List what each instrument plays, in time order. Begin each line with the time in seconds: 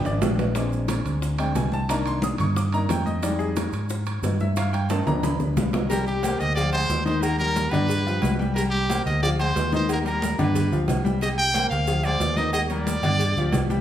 Already playing: grand piano F3 B3 D4
0.05 fingered electric bass G#1, grand piano D5, high bongo, high conga, high timbale, maracas
0.21 fingered electric bass A#1, high bongo, low bongo, high conga, low timbale, maracas
0.39 high bongo, high conga, low timbale, maracas
0.55 grand piano G#3 C4 D4, high bongo, high conga, high timbale, maracas
0.72 high bongo, high conga, maracas
0.88 high bongo, high conga, high timbale, low timbale, maracas
1.05 fingered electric bass D2, high timbale, maracas
1.22 high bongo, high conga, maracas
1.39 grand piano G#3 C4 D4 G5, high bongo, high conga, high timbale, maracas
1.55 fingered electric bass C2, grand piano G#5, high bongo, low bongo, high conga, high timbale, low timbale, maracas
1.72 grand piano A5, high bongo, high conga, maracas
1.89 grand piano D#3 A#3 D4 A#5, high bongo, high conga, high timbale, maracas
2.06 grand piano C6, high bongo, high conga, high timbale, maracas
2.22 grand piano D#6, high bongo, high conga, low timbale, maracas
2.38 fingered electric bass G2, grand piano C#6, high conga, low conga, high timbale, maracas
2.56 grand piano D6, high bongo, high conga, maracas
2.72 grand piano D#3 A#3 D4 A#5, high bongo, high conga, high timbale, maracas
2.89 fingered electric bass F2, grand piano G5, high bongo, low bongo, high conga, high timbale, low timbale, maracas
3.06 grand piano D#5, high bongo, high conga, maracas
3.23 grand piano G3 G#3 D#4 D5, high bongo, high conga, high timbale, maracas
3.39 grand piano G#4, high bongo, high conga, maracas
3.56 high bongo, high conga, high timbale, low timbale, maracas
3.73 fingered electric bass G#2, high timbale, maracas
3.89 high bongo, high conga, maracas
4.06 high bongo, high conga, high timbale, maracas
4.22 fingered electric bass G2, high bongo, low bongo, high conga, high timbale, low timbale, maracas
4.40 grand piano E5, high bongo, high conga, maracas
4.56 grand piano F5, high bongo, high conga, high timbale, maracas
4.73 grand piano G5, high bongo, high conga, high timbale, maracas
4.90 grand piano A5, high bongo, high conga, high timbale, maracas
5.06 fingered electric bass D2, grand piano F3 B3 D4 A#5, high conga, low conga, high timbale, maracas
5.23 grand piano B5, high bongo, high conga, low conga, high timbale, maracas
5.40 fingered electric bass D2, low bongo, high conga, maracas
5.56 fingered electric bass C2, low bongo, high conga, low timbale, maracas
5.73 low bongo, high conga, low timbale, maracas
5.89 grand piano G3 G4 G5, trumpet A#4, cowbell, high conga, low agogo, maracas
6.07 trumpet G4, high conga, maracas
6.23 grand piano A#3 A#4 C5, cowbell, high conga, low timbale, low agogo, maracas
6.40 fingered electric bass D2, trumpet D#5, cowbell, maracas
6.55 grand piano F3 F4 F5, trumpet D5, cowbell, high conga, low agogo, maracas
6.72 grand piano G#3 G#4 C5, trumpet C5, high conga, low agogo, maracas
6.90 fingered electric bass D#2, cowbell, high conga, low timbale, maracas
7.05 grand piano D#3 D#4 D#5, trumpet C5, cowbell, high conga, maracas
7.22 trumpet A#4, cowbell, high conga, low agogo, maracas
7.39 grand piano G3 G4 A#4, trumpet A#4, high conga, low agogo, maracas
7.56 cowbell, high conga, low timbale, maracas
7.70 fingered electric bass G2, grand piano D3 D4 D5, trumpet B4, cowbell, high conga, low conga, low agogo, maracas
7.88 cowbell, high conga, low agogo, maracas
8.06 grand piano F3 F4 G4, high conga, maracas
8.22 fingered electric bass C2, cowbell, high conga, low timbale, low agogo, maracas
8.39 grand piano G3 G4 G5, high conga, maracas
8.54 grand piano G3 G4 G5, trumpet A#4, cowbell, high conga, low agogo, maracas
8.70 trumpet G4, high conga
8.75 maracas
8.90 grand piano A#3 A#4 C5, cowbell, high conga, low timbale, low agogo, maracas
9.05 fingered electric bass D2, trumpet D#5, cowbell, maracas
9.23 grand piano F3 F4 F5, trumpet D5, cowbell, high conga, low agogo, maracas
9.39 grand piano G#3 G#4 C5, trumpet C5, high conga, low agogo, maracas
9.56 fingered electric bass D#2, cowbell, high conga, low timbale, maracas
9.72 grand piano D#3 D#4 D#5, trumpet C5, cowbell, high conga, maracas
9.89 trumpet A#4, cowbell, high conga, low agogo, maracas
10.04 grand piano G3 G4 A#4, trumpet A#4, high conga, low agogo, maracas
10.22 cowbell, high conga, low timbale, maracas
10.38 fingered electric bass G2, grand piano D3 D4 D5, trumpet B4, cowbell, high conga, low conga, low agogo, maracas
10.55 cowbell, high conga, low conga, low agogo, maracas
10.72 fingered electric bass D2, grand piano F3 F4 G4, high conga, maracas
10.88 fingered electric bass C2, cowbell, high conga, low timbale, low agogo, maracas
11.04 grand piano G3 G4 G5, high conga, maracas
11.21 grand piano G3 G4 G5, trumpet D#5, cowbell, high conga, low agogo, maracas
11.38 trumpet G5, high conga, maracas
11.54 grand piano A#3 A#4 C5, cowbell, high conga, low timbale, low agogo, maracas
11.70 fingered electric bass D2, trumpet F5, cowbell, maracas
11.87 grand piano F3 F4 F5, cowbell, high conga, low agogo, maracas
12.03 grand piano G#3 G#4 C5, trumpet D5, high conga, low agogo, maracas
12.20 fingered electric bass D#2, cowbell, high conga, low timbale, maracas
12.37 grand piano D#3 D#4 D#5, trumpet D#5, cowbell, high conga, maracas
12.53 trumpet D#5, cowbell, high conga, low agogo, maracas
12.70 grand piano G3 G4 A#4, trumpet D5, high conga, low agogo, maracas
12.86 cowbell, high conga, low timbale, maracas
13.03 fingered electric bass G2, grand piano D3 D4 D5, cowbell, high conga, low conga, low agogo, maracas
13.20 cowbell, high conga, low agogo, maracas
13.36 fingered electric bass D2, grand piano F3 F4 G4, high conga, maracas
13.52 fingered electric bass C2, cowbell, high conga, low timbale, low agogo, maracas
13.70 grand piano G3 G4 G5, high conga, maracas